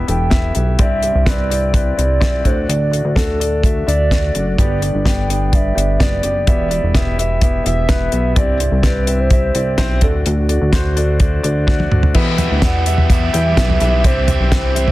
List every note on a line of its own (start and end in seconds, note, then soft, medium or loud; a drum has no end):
0.00 0.81 B2 medium
0.00 0.08 B3 medium
0.00 0.08 E4 medium
0.00 0.07 G4 medium
0.00 0.82 B4 medium
0.00 0.30 E5 medium
0.00 0.81 G5 medium
0.00 downlifter medium
0.07 0.53 E1 medium
0.07 0.29 B3 medium
0.07 0.29 E4 medium
0.07 0.28 G4 medium
0.07 0.29 A4 medium
0.07 0.53 G5 loud
0.07 closed hi-hat medium
0.30 0.52 B3 medium
0.30 0.52 E4 medium
0.30 0.52 G4 medium
0.30 0.52 E5 medium
0.30 kick medium
0.30 snare medium
0.30 closed hi-hat medium
0.55 0.78 B1 medium
0.55 0.76 B3 medium
0.55 0.76 E4 medium
0.55 0.76 G4 medium
0.55 0.76 E5 medium
0.55 closed hi-hat soft
0.79 1.12 C2 loud
0.79 1.46 G2 medium
0.79 1.00 C4 medium
0.79 1.00 E4 medium
0.79 1.00 G4 medium
0.79 1.00 D5 medium
0.79 1.30 E5 loud
0.79 kick medium
0.79 closed hi-hat medium
1.02 1.23 C4 medium
1.02 1.23 E4 medium
1.02 1.24 G4 medium
1.02 1.23 D5 medium
1.02 closed hi-hat soft
1.15 1.26 C2 medium
1.26 1.94 C2 medium
1.26 1.47 C4 medium
1.26 1.47 E4 medium
1.26 1.47 G4 medium
1.26 1.47 B4 medium
1.26 1.75 D5 loud
1.26 kick medium
1.26 snare medium
1.26 closed hi-hat medium
1.50 1.71 C4 medium
1.50 1.71 E4 medium
1.50 1.71 G4 medium
1.50 1.71 D5 medium
1.50 closed hi-hat medium
1.73 1.94 C4 medium
1.73 1.95 E4 medium
1.73 1.94 G4 medium
1.73 1.94 B4 medium
1.73 2.47 D5 loud
1.73 kick medium
1.73 closed hi-hat medium
1.97 2.20 C2 medium
1.97 2.18 C4 medium
1.97 2.18 E4 medium
1.97 2.18 G4 medium
1.97 2.18 D5 medium
1.97 closed hi-hat medium
2.20 2.43 B1 medium
2.20 2.42 C4 medium
2.20 2.42 E4 medium
2.20 2.42 G4 medium
2.20 2.42 D5 medium
2.20 kick medium
2.20 snare medium
2.20 closed hi-hat medium
2.44 2.67 D2 medium
2.44 3.11 A2 soft
2.44 2.86 A3 medium
2.44 2.86 D4 medium
2.44 2.86 F#4 medium
2.44 2.68 C5 medium
2.44 2.50 C#5 medium
2.44 kick medium
2.44 closed hi-hat medium
2.50 2.89 D5 medium
2.69 3.02 D2 loud
2.69 3.17 D5 loud
2.69 closed hi-hat medium
2.91 3.13 A3 medium
2.91 3.13 D4 medium
2.91 3.13 F#4 soft
2.91 3.13 D5 medium
2.91 closed hi-hat medium
3.05 3.15 D2 medium
3.15 3.83 D2 medium
3.15 3.36 A3 medium
3.15 3.36 D4 medium
3.15 3.37 F#4 medium
3.15 3.63 A4 medium
3.15 3.36 A4 medium
3.15 kick medium
3.15 snare medium
3.15 closed hi-hat medium
3.40 3.60 A3 medium
3.40 3.60 D4 medium
3.40 3.60 F#4 medium
3.40 3.61 D5 medium
3.40 closed hi-hat medium
3.63 3.84 A3 medium
3.63 3.84 D4 medium
3.63 3.84 F#4 medium
3.63 3.84 E5 medium
3.63 kick loud
3.63 closed hi-hat medium
3.87 4.31 D2 loud
3.87 4.08 A3 medium
3.87 4.08 D4 medium
3.87 4.08 F#4 medium
3.87 4.54 D5 medium
3.87 4.07 E5 medium
3.87 closed hi-hat medium
4.11 4.32 A3 medium
4.11 4.32 D4 medium
4.11 4.32 F#4 medium
4.11 4.32 D5 medium
4.11 kick medium
4.11 snare medium
4.11 closed hi-hat medium
4.34 4.57 F#1 medium
4.34 4.55 A3 medium
4.34 4.55 D4 medium
4.34 4.55 F#4 medium
4.34 4.55 D5 medium
4.34 closed hi-hat medium
4.58 4.91 G1 medium
4.58 5.26 G2 medium
4.58 5.26 D3 medium
4.58 4.79 B3 medium
4.58 4.79 D4 medium
4.58 4.79 G4 medium
4.58 4.79 D5 medium
4.58 5.07 D5 medium
4.58 kick medium
4.58 closed hi-hat medium
4.82 5.02 B3 medium
4.82 5.03 D4 medium
4.82 5.03 G4 medium
4.82 5.03 D5 medium
4.82 closed hi-hat medium
4.95 5.05 G1 medium
5.05 5.73 G1 medium
5.05 5.26 B3 medium
5.05 5.26 D4 medium
5.05 5.26 G4 medium
5.05 5.26 D5 medium
5.05 5.56 G5 loud
5.05 kick medium
5.05 snare medium
5.05 closed hi-hat medium
5.29 5.50 B3 medium
5.29 5.50 D4 medium
5.29 5.50 G4 medium
5.29 5.50 D5 medium
5.29 closed hi-hat medium
5.52 5.73 B3 medium
5.52 5.73 D4 medium
5.52 5.73 G4 medium
5.52 5.73 D5 medium
5.52 6.03 E5 loud
5.52 kick medium
5.52 closed hi-hat medium
5.75 5.99 G1 medium
5.75 5.96 B3 medium
5.75 5.96 D4 medium
5.75 5.96 G4 medium
5.75 5.97 D5 medium
5.75 closed hi-hat medium
6.00 6.22 F#1 medium
6.00 6.21 B3 medium
6.00 6.20 D4 medium
6.00 6.20 G4 medium
6.00 6.20 D5 medium
6.00 6.24 D5 medium
6.00 kick medium
6.00 snare medium
6.00 closed hi-hat medium
6.23 6.46 F#1 medium
6.23 6.44 B3 medium
6.23 6.44 D4 medium
6.23 6.44 G4 medium
6.23 6.44 D5 medium
6.23 7.15 D5 medium
6.23 closed hi-hat soft
6.47 6.80 E1 medium
6.47 7.14 B2 medium
6.47 6.68 B3 medium
6.47 6.68 E4 medium
6.47 6.68 G4 medium
6.47 6.68 E5 medium
6.47 kick medium
6.47 closed hi-hat medium
6.70 6.91 B3 medium
6.70 6.91 E4 medium
6.70 6.91 G4 medium
6.70 6.91 D5 medium
6.70 closed hi-hat medium
6.84 6.94 E1 medium
6.94 7.62 E1 medium
6.94 7.15 B3 medium
6.94 7.15 E4 medium
6.94 7.15 G4 medium
6.94 7.15 E5 loud
6.94 kick medium
6.94 snare medium
6.94 closed hi-hat medium
7.18 7.39 B3 medium
7.18 7.39 E4 medium
7.18 7.39 G4 medium
7.18 7.39 E5 medium
7.18 closed hi-hat medium
7.41 7.62 B3 medium
7.41 7.62 E4 medium
7.41 7.62 G4 medium
7.41 kick medium
7.41 closed hi-hat medium
7.64 8.10 E1 loud
7.64 7.85 B3 medium
7.64 7.85 E4 medium
7.64 7.85 G4 medium
7.64 7.85 E5 medium
7.64 8.33 E5 loud
7.64 closed hi-hat medium
7.89 8.10 B3 medium
7.89 8.10 E4 medium
7.89 8.10 G4 medium
7.89 8.10 B4 medium
7.89 kick loud
7.89 snare loud
7.89 closed hi-hat medium
8.12 8.35 B1 medium
8.12 8.33 B3 medium
8.12 8.33 E4 medium
8.12 8.34 G4 medium
8.12 8.33 E5 medium
8.12 closed hi-hat soft
8.36 8.70 C2 loud
8.36 9.03 G2 medium
8.36 8.57 C4 medium
8.36 8.57 E4 medium
8.36 8.57 G4 medium
8.36 8.57 D5 medium
8.36 8.81 D5 loud
8.36 kick loud
8.36 closed hi-hat medium
8.60 8.81 C4 medium
8.60 8.81 E4 medium
8.60 8.81 G4 medium
8.60 8.81 D5 medium
8.60 closed hi-hat medium
8.72 8.83 C2 medium
8.83 9.51 C2 medium
8.83 9.04 C4 medium
8.83 9.04 E4 medium
8.83 9.04 G4 medium
8.83 9.21 B4 loud
8.83 9.04 D5 medium
8.83 kick medium
8.83 snare loud
8.83 closed hi-hat medium
9.07 9.28 C4 medium
9.07 9.28 E4 medium
9.07 9.28 G4 medium
9.07 9.28 E5 medium
9.07 closed hi-hat medium
9.20 10.02 C5 loud
9.30 9.52 C4 medium
9.30 9.52 E4 medium
9.30 9.52 G4 medium
9.30 9.52 E5 medium
9.30 kick loud
9.30 closed hi-hat medium
9.55 9.77 C2 medium
9.55 9.76 C4 medium
9.55 9.75 E4 medium
9.55 9.75 G4 medium
9.55 9.76 D5 medium
9.55 closed hi-hat medium
9.78 10.04 B1 medium
9.78 9.99 C4 loud
9.78 9.99 E4 medium
9.78 9.99 G4 medium
9.78 9.99 C5 loud
9.78 kick medium
9.78 snare loud
9.78 closed hi-hat medium
10.01 10.24 D2 medium
10.01 10.69 A2 medium
10.01 10.43 A3 medium
10.01 10.44 D4 medium
10.01 10.43 F#4 medium
10.01 10.13 A4 medium
10.01 10.43 D5 medium
10.01 kick medium
10.01 closed hi-hat medium
10.26 10.59 D2 loud
10.26 11.64 F#4 medium
10.26 closed hi-hat medium
10.49 10.70 A3 medium
10.49 10.70 D4 medium
10.49 10.70 F#4 medium
10.49 10.70 D5 medium
10.49 closed hi-hat medium
10.62 10.72 D2 medium
10.72 10.93 A3 medium
10.72 10.93 D4 medium
10.72 10.94 F#4 medium
10.72 10.94 C5 medium
10.72 kick medium
10.72 snare medium
10.72 closed hi-hat medium
10.96 11.17 A3 medium
10.96 11.17 D4 medium
10.96 11.18 F#4 medium
10.96 11.17 D5 medium
10.96 closed hi-hat medium
11.20 11.41 A3 medium
11.20 11.41 D4 medium
11.20 11.41 F#4 medium
11.20 11.41 D5 medium
11.20 kick medium
11.20 closed hi-hat medium
11.43 11.88 D2 medium
11.43 11.65 A3 medium
11.43 11.65 D4 medium
11.43 11.64 F#4 medium
11.43 11.65 D5 medium
11.43 closed hi-hat medium
11.67 11.88 A3 medium
11.67 11.88 D4 medium
11.67 11.88 F#4 medium
11.67 11.88 D5 medium
11.67 kick medium
11.67 snare soft
11.80 high tom soft
11.91 12.14 D2 medium
11.91 12.12 A3 medium
11.91 12.12 D4 medium
11.91 12.12 F#4 medium
11.91 12.12 D5 medium
11.91 mid tom medium
12.03 floor tom medium
12.14 12.48 E2 loud
12.14 12.39 E2 medium
12.14 12.82 B2 medium
12.14 12.39 B2 medium
12.14 14.92 E3 medium
12.14 12.38 E3 medium
12.14 14.92 G3 medium
12.14 12.38 G3 medium
12.14 12.36 B3 loud
12.14 14.03 B3 medium
12.14 12.37 B3 medium
12.14 12.36 E4 medium
12.14 14.92 G4 medium
12.14 12.36 G4 medium
12.14 12.36 E5 loud
12.14 kick medium
12.14 crash medium
12.37 12.62 E3 soft
12.37 12.62 G3 soft
12.37 12.59 B3 medium
12.37 12.62 B3 soft
12.37 12.62 E4 medium
12.37 12.59 E4 medium
12.37 12.60 G4 medium
12.37 12.60 F#5 medium
12.37 closed hi-hat medium
12.37 floor tom medium
12.52 12.61 D2 medium
12.62 12.86 E2 medium
12.62 13.30 E2 medium
12.62 12.86 B2 medium
12.62 12.86 E3 medium
12.62 12.87 G3 medium
12.62 12.83 B3 medium
12.62 12.86 B3 medium
12.62 12.83 E4 medium
12.62 12.84 E4 medium
12.62 12.83 G4 medium
12.62 12.83 D5 medium
12.62 13.13 F#5 loud
12.62 kick medium
12.62 snare loud
12.62 closed hi-hat medium
12.86 13.08 E3 soft
12.86 13.08 G3 soft
12.86 13.07 B3 medium
12.86 13.10 B3 medium
12.86 13.10 E4 medium
12.86 13.07 E4 medium
12.86 13.07 G4 medium
12.86 13.07 E5 medium
12.86 closed hi-hat medium
12.98 floor tom medium
13.09 13.33 E3 medium
13.09 13.33 G3 medium
13.09 13.31 B3 medium
13.09 13.32 B3 medium
13.09 13.31 E4 medium
13.09 13.31 G4 medium
13.09 13.31 E5 medium
13.09 14.07 E5 loud
13.09 kick medium
13.09 closed hi-hat medium
13.33 13.56 E2 medium
13.33 13.56 E3 soft
13.33 13.57 G3 soft
13.33 13.57 B3 soft
13.33 13.54 B3 medium
13.33 13.57 E4 medium
13.33 13.54 E4 medium
13.33 13.54 G4 medium
13.33 13.54 G5 medium
13.33 closed hi-hat medium
13.57 13.79 B1 medium
13.57 13.81 E2 medium
13.57 13.81 B2 medium
13.57 13.81 E3 medium
13.57 13.80 G3 medium
13.57 13.78 B3 medium
13.57 13.80 B3 medium
13.57 13.78 E4 medium
13.57 13.78 G4 medium
13.57 13.78 E5 medium
13.57 kick medium
13.57 snare loud
13.57 closed hi-hat medium
13.70 floor tom medium
13.79 14.03 B1 medium
13.79 14.03 E3 soft
13.79 14.04 G3 soft
13.79 14.05 B3 soft
13.79 14.02 B3 medium
13.79 14.04 E4 medium
13.79 14.02 E4 medium
13.79 14.02 G4 medium
13.79 14.02 E5 medium
13.79 closed hi-hat soft
14.04 14.38 C2 loud
14.04 14.72 G2 medium
14.04 14.28 C3 medium
14.04 14.28 E3 medium
14.04 14.29 G3 medium
14.04 14.92 C4 medium
14.04 14.26 C4 medium
14.04 14.28 C4 medium
14.04 14.26 E4 medium
14.04 14.26 G4 medium
14.04 14.51 C5 medium
14.04 14.26 E5 medium
14.04 kick loud
14.04 closed hi-hat medium
14.27 14.51 G3 soft
14.27 14.49 C4 medium
14.27 14.52 C4 medium
14.27 14.52 E4 medium
14.27 14.49 E4 medium
14.27 14.49 G4 medium
14.27 14.49 E5 medium
14.27 closed hi-hat medium
14.27 floor tom medium
14.40 14.51 B1 medium
14.51 14.92 C2 medium
14.51 14.76 C3 medium
14.51 14.76 E3 medium
14.51 14.76 G3 medium
14.51 14.73 C4 medium
14.51 14.75 C4 medium
14.51 14.73 E4 medium
14.51 14.73 G4 medium
14.51 14.92 C5 medium
14.51 14.73 G5 medium
14.51 kick loud
14.51 snare medium
14.51 closed hi-hat medium
14.74 14.92 G3 soft
14.74 14.92 C4 medium
14.74 14.92 E4 medium
14.74 14.92 G4 medium
14.74 14.92 E5 medium
14.74 closed hi-hat medium
14.88 floor tom medium